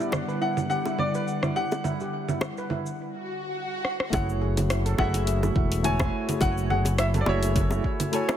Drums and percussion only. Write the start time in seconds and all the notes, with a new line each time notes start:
0.00 shaker
0.12 cross-stick, high bongo, low conga, shaker
0.29 shaker
0.57 low conga, shaker
0.70 shaker
0.85 high bongo, shaker
0.99 low conga
1.14 shaker
1.28 shaker
1.43 cross-stick, low conga, shaker
1.71 high bongo, shaker
1.84 low conga, shaker
2.00 shaker
2.29 low conga, shaker
2.41 cross-stick, high bongo, shaker
2.57 shaker
2.70 low conga
2.86 shaker
3.85 cross-stick
4.00 cross-stick
4.13 kick, open hi-hat, high bongo, low conga, shaker
4.29 shaker
4.57 open hi-hat, high bongo, low conga, shaker
4.70 cross-stick, open hi-hat, shaker
4.86 open hi-hat, shaker
4.98 kick, high bongo, low conga
5.14 open hi-hat, shaker
5.27 open hi-hat, shaker
5.43 high bongo, low conga, shaker
5.56 kick
5.72 open hi-hat, shaker
5.84 open hi-hat, low conga, shaker
6.00 kick, cross-stick, high bongo, shaker
6.29 open hi-hat, low conga, shaker
6.41 kick, open hi-hat, high bongo, shaker
6.58 shaker
6.70 low conga
6.85 open hi-hat, high bongo, shaker
6.98 cross-stick, open hi-hat, shaker
7.14 open hi-hat, low conga, shaker
7.26 high bongo
7.43 open hi-hat, shaker
7.56 kick, open hi-hat, low conga, shaker
7.71 high bongo, shaker
7.84 kick
8.00 open hi-hat, low conga, shaker
8.13 open hi-hat, shaker
8.29 cross-stick, high bongo, shaker